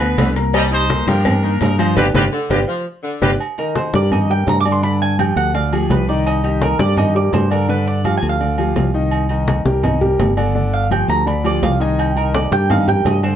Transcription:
Already playing: fingered electric bass D2, trumpet section D4 B4
0.00 grand piano B3 B4 B5, high conga, low agogo, claves
0.18 fingered electric bass C2, saxophone section D3, cowbell, high conga, low timbale, low agogo
0.36 grand piano A#3 A#4 A#5, cowbell, high conga
0.54 saxophone section G3, trumpet section G4 D#5, cowbell, low agogo, claves
0.71 grand piano D#4 D#5 D#6, trumpet section D#4 C5, high conga, low agogo
0.89 grand piano A#3 A#4 A#5, cowbell, high conga, low timbale, low agogo
1.07 fingered electric bass G2, saxophone section F3, grand piano G3 G4 G5, trumpet section D4 A#4, cowbell, high conga
1.25 cowbell, high conga, low conga, low agogo, claves
1.43 saxophone section D#3, grand piano A#3 A#4 A#5, high conga
1.61 fingered electric bass G2, trumpet section D#4 A#4, cowbell, high conga, low timbale, low agogo
1.79 grand piano F3 F4 F5, trumpet section D#4 C5, cowbell, high conga, low agogo, claves
1.96 fingered electric bass G1, trumpet section F4 G4 B4, grand piano G4 B4 D5, cowbell, high conga, high timbale, claves
2.14 fingered electric bass G1, trumpet section F4 G4 B4, grand piano G4 B4 D5, cowbell, high conga, high timbale, claves
2.33 saxophone section D3
2.50 fingered electric bass G1, trumpet section F4 G4 B4, grand piano G4 B4 D5, cowbell, high conga, high timbale, claves
2.68 saxophone section F3
3.03 saxophone section D3
3.22 fingered electric bass G1, trumpet section F4 G4 B4, grand piano G4 B4 D5, cowbell, high conga, high timbale, claves
3.40 high conga, low agogo
3.58 grand piano D#3 D#4 D#5, mandolin A#4, high conga, low agogo
3.76 mandolin C5, high conga, low timbale, low agogo
3.94 fingered electric bass G2, grand piano G3 G4 A#4, mandolin D5, high conga
4.12 grand piano D#3 D#4 D#5, mandolin D#5, high conga, low conga, low agogo
4.30 grand piano G3 G4 A#4, mandolin G5, high conga
4.47 fingered electric bass G2, mandolin A#5, high conga, low timbale, low agogo
4.60 mandolin D6
4.65 grand piano D3 D4 D5, high conga, low agogo
4.72 mandolin C6
4.83 grand piano D3 D4 D5, mandolin B5, high conga
5.01 mandolin G#5, high conga
5.19 grand piano F3 F4 G4, mandolin G5, high conga, low timbale, low agogo
5.36 fingered electric bass D2, mandolin F#5, high conga, low agogo
5.54 grand piano D3 D4 D5, mandolin F5, high conga, low agogo
5.72 grand piano F3 F4 G4, mandolin G#4, high conga, low agogo
5.90 fingered electric bass C2, mandolin B4, high conga, low timbale, low agogo
6.09 grand piano D#3 D#4 D#5, mandolin D5, high conga
6.26 mandolin D#5, high conga, low agogo
6.44 grand piano D#3 D#4 D#5, mandolin G4, high conga, low agogo
6.61 mandolin A#4, high conga, low timbale, low agogo
6.79 fingered electric bass G2, grand piano G3 G4 A#4, mandolin D5, high conga
6.97 grand piano D#3 D#4 D#5, mandolin D#5, high conga, low conga, low agogo
7.15 grand piano G3 G4 A#4, mandolin D5, high conga
7.33 fingered electric bass G2, mandolin C5, high conga, low timbale, low agogo
7.50 grand piano D3 D4 D5, mandolin A#4, high conga, low agogo
7.68 grand piano D3 D4 D5, mandolin B4, high conga
7.86 mandolin D5, high conga
8.04 grand piano F3 F4 G4, mandolin F5, high conga, low timbale, low agogo
8.17 mandolin G#5
8.22 fingered electric bass D2, high conga, low agogo
8.29 mandolin F5
8.40 grand piano D3 D4 D5, high conga, low agogo
8.58 grand piano F3 F4 G4, high conga, low agogo
8.76 fingered electric bass C2, high conga, low timbale, low agogo
8.94 grand piano D#3 D#4 D#5, high conga
9.11 high conga, low agogo
9.29 grand piano D#3 D#4 D#5, high conga, low agogo
9.48 high conga, low timbale, low agogo
9.65 fingered electric bass C2, grand piano G3 G4 A#4, high conga
9.83 grand piano D#3 D#4 D#5, high conga, low conga, low agogo
10.01 grand piano G3 G4 A#4, high conga, low conga
10.19 fingered electric bass G1, high conga, low timbale, low agogo
10.37 grand piano D3 D4 D5, high conga, low agogo
10.55 grand piano D3 D4 D5, high conga
10.73 mandolin F5, high conga
10.90 grand piano F3 F4 G4, mandolin G5, high conga, low timbale, low agogo
11.08 fingered electric bass D2, mandolin A#5, high conga, low agogo
11.26 grand piano D3 D4 D5, mandolin B5, high conga, low agogo
11.44 grand piano F3 F4 G4, mandolin D5, high conga, low agogo
11.62 fingered electric bass C2, mandolin F5, high conga, low timbale, low agogo
11.80 grand piano D#3 D#4 D#5, mandolin G#5, high conga
11.99 mandolin G5, high conga, low agogo
12.16 grand piano D#3 D#4 D#5, mandolin A#4, high conga, low agogo
12.34 mandolin D5, high conga, low timbale, low agogo
12.52 fingered electric bass G2, grand piano G3 G4 A#4, mandolin G5, high conga
12.70 grand piano D#3 D#4 D#5, mandolin F5, high conga, low conga, low agogo
12.87 grand piano G3 G4 A#4, mandolin G5, high conga, low conga
13.05 fingered electric bass G2, mandolin D#5, high conga, low timbale, low agogo
13.23 grand piano D3 D4 D5, mandolin C5, high conga, low agogo

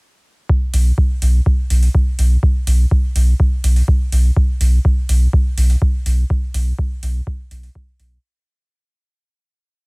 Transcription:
0.49 kick
0.74 sub bass B1, open hi-hat
0.98 kick
1.22 sub bass B1, open hi-hat
1.46 kick
1.70 sub bass B1, open hi-hat
1.83 open hi-hat
1.95 kick
2.19 sub bass B1, open hi-hat
2.43 kick
2.67 sub bass B1, open hi-hat
2.91 kick
3.16 sub bass B1, open hi-hat
3.40 kick
3.64 sub bass B1, open hi-hat
3.76 open hi-hat
3.88 kick
4.12 sub bass B1, open hi-hat
4.37 kick
4.61 sub bass B1, open hi-hat
4.85 kick
5.09 sub bass B1, open hi-hat
5.33 kick
5.58 sub bass B1, open hi-hat
5.70 open hi-hat
5.82 kick
6.06 sub bass B1, open hi-hat
6.30 kick
6.54 sub bass B1, open hi-hat
6.79 kick
7.03 sub bass B1, open hi-hat
7.27 kick
7.51 sub bass B1, open hi-hat
7.63 open hi-hat
7.75 kick
8.00 sub bass B1, open hi-hat

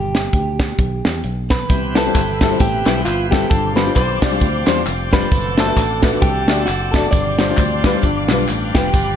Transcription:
Already playing: fingered electric bass G1, clean electric guitar G4
0.15 snare, closed hi-hat
0.33 fingered electric bass D2, kick, closed hi-hat
0.60 kick, snare, closed hi-hat
0.79 fingered electric bass B1, kick, closed hi-hat
1.05 fingered electric bass E2, snare, closed hi-hat
1.24 fingered electric bass B1, closed hi-hat
1.50 clean electric guitar B4, kick, snare, closed hi-hat
1.69 fingered electric bass C2, grand piano C3, tonewheel organ E3 B3 C4 G4, string section E5 G5 B5, kick, closed hi-hat, tambourine
1.95 grand piano G3 C4 E4 B4, clean electric guitar A4, snare, closed hi-hat, tambourine
2.06 grand piano G3 C4 E4 C5
2.15 fingered electric bass G1, kick, clap, closed hi-hat, tambourine
2.41 grand piano G3 C4 E4 A4, kick, snare, closed hi-hat, tambourine
2.50 grand piano G3 C4 E4 C5
2.60 fingered electric bass A1, clean electric guitar G4, kick, closed hi-hat, tambourine
2.86 fingered electric bass B1, grand piano G3 C4 E4 B4, snare, clap, closed hi-hat, tambourine
3.05 fingered electric bass G1, clean electric guitar F4, clap, closed hi-hat, tambourine
3.31 grand piano G3 C4 E4 A4, clean electric guitar G4, kick, snare, closed hi-hat, tambourine
3.50 fingered electric bass G1, grand piano G2, tonewheel organ F3 D4 G4, clean electric guitar A4, string section F5 G5 D6, kick, closed hi-hat, tambourine
3.76 grand piano G3 D4 F4 C5, clean electric guitar B4, snare, closed hi-hat, tambourine
3.87 grand piano G3 D4 F4 C5
3.96 fingered electric bass B1, clean electric guitar C5, kick, clap, closed hi-hat, tambourine
4.21 fingered electric bass C2, grand piano G3 D4 F4 D5, kick, snare, closed hi-hat, tambourine
4.32 grand piano G3 D4 F4 C5
4.40 fingered electric bass D2, kick, closed hi-hat, tambourine
4.67 fingered electric bass E2, grand piano G3 D4 F4 C5, snare, clap, closed hi-hat, tambourine
4.86 fingered electric bass F1, clap, closed hi-hat, tambourine
5.13 grand piano G3 D4 F4 C5, clean electric guitar B4, kick, snare, closed hi-hat, tambourine
5.32 fingered electric bass F#1, tonewheel organ A3 A4, string section F#5 A5 D6, kick, closed hi-hat, tambourine
5.58 grand piano A3 D4 F#4 C5, clean electric guitar A4, snare, closed hi-hat, tambourine
5.67 grand piano A3 D4 F#4 B4
5.76 fingered electric bass A1, kick, clap, closed hi-hat, tambourine
6.02 grand piano A3 D4 F#4 B4, kick, snare, closed hi-hat, tambourine
6.12 grand piano A3 D4 F#4 B4
6.22 fingered electric bass C2, clean electric guitar G4, kick, closed hi-hat, tambourine
6.47 fingered electric bass D2, grand piano A3 D4 F#4 D5, snare, clap, closed hi-hat, tambourine
6.66 fingered electric bass F#1, clean electric guitar F#4, clap, closed hi-hat, tambourine
6.91 grand piano A3 D4 F#4 D5, clean electric guitar A4, kick, snare, closed hi-hat, tambourine
7.11 fingered electric bass G1, grand piano G2, tonewheel organ F3 C4 D4 G4, clean electric guitar D5, string section F5 G5, kick, closed hi-hat, tambourine
7.39 grand piano G3 D4 F4 C5, snare, closed hi-hat, tambourine
7.50 grand piano G3 D4 F4 C5
7.57 fingered electric bass D2, kick, clap, closed hi-hat, tambourine
7.84 grand piano G3 D4 F4 B4, kick, snare, closed hi-hat, tambourine
7.95 grand piano G3 D4 F4 C5
8.02 fingered electric bass G1, grand piano G2, tonewheel organ B3, string section B5, kick, closed hi-hat, tambourine
8.28 fingered electric bass B1, grand piano G3 D4 F4 B4, snare, clap, closed hi-hat, tambourine
8.48 fingered electric bass A1, clap, closed hi-hat, tambourine
8.75 fingered electric bass F1, grand piano G3 D4 F4 B4, clean electric guitar G4, kick, snare, closed hi-hat, tambourine
8.94 fingered electric bass G1, kick, closed hi-hat, tambourine

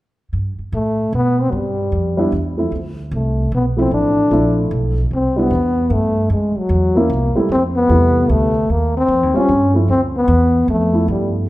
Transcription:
0.33 upright bass G2
0.58 muted upright bass stroke
0.72 upright bass A2, trombone A3
1.13 upright bass B2, trombone B3
1.41 trombone C4
1.51 upright bass G2, trombone F#3
1.56 trombone G3
1.92 upright bass F2
2.17 grand piano G3 B3 D4 E4
2.32 upright bass E2
2.57 grand piano F3 A3 C4 E4
2.72 upright bass D2
3.11 upright bass C2, trombone A3
3.52 upright bass B1, trombone B3
3.77 grand piano F3 A3 C4 E4, trombone C4
3.91 upright bass A1, trombone D4
4.31 upright bass A#1, grand piano F3 A3 C4 E4
4.71 upright bass B1
5.11 upright bass C2, trombone C4
5.36 grand piano G3 B3 D4 E4, trombone B3
5.50 upright bass E2
5.90 upright bass G2, trombone A3
6.30 upright bass F#2, trombone G#3
6.56 trombone F#3, muted upright bass stroke
6.69 upright bass E2
6.95 grand piano A#3 C4 C#4 E4, trombone A#3
7.10 upright bass C2
7.36 grand piano G3 A3 C4 E4, muted upright bass stroke
7.49 upright bass F2, trombone C4
7.77 trombone B3
7.89 upright bass E2, grand piano C3 G3 A3 E4
8.29 upright bass D2, trombone A3
8.69 upright bass D#2, trombone A#3
8.98 trombone C4
9.08 upright bass F2
9.23 upright bass D#2
9.34 upright bass C#2, grand piano G3 C4 C#4 F4, trombone C#4
9.49 upright bass G2
9.74 grand piano F3 A3 C4 E4
9.88 upright bass D2, trombone C4
10.17 trombone B3
10.28 upright bass E2
10.68 upright bass F2, trombone A3
10.93 grand piano F3 A3 B3 E4
11.08 upright bass G2, trombone G3

